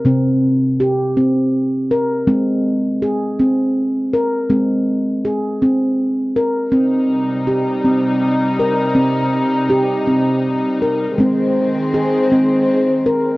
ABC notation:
X:1
M:3/4
L:1/8
Q:"Swing 16ths" 1/4=81
K:Cm
V:1 name="Handpan"
C2 G C2 B | C2 A C2 B | C2 A C2 B | z2 G C2 B |
z2 G C2 B | C2 A C2 B |]
V:2 name="Handpan" clef=bass
C,6 | A,6 | A,6 | C6 |
C6 | A,6 |]
V:3 name="String section" clef=bass
z6 | z6 | z6 | [C,G,E]6- |
[C,G,E]6 | [E,A,C]6 |]